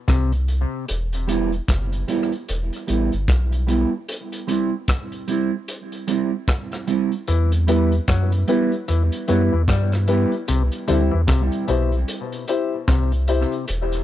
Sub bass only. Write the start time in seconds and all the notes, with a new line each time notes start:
0.09 C2
0.90 E1
1.69 F#1
2.49 E1
2.89 A1
3.13 G1
3.29 B1
7.29 E2
8.09 F#2
8.89 E2
9.29 F#2
9.53 E2
9.69 G2
10.49 C2
10.90 D2
11.14 E2
11.29 C2
11.69 B1
12.89 C2
13.69 E1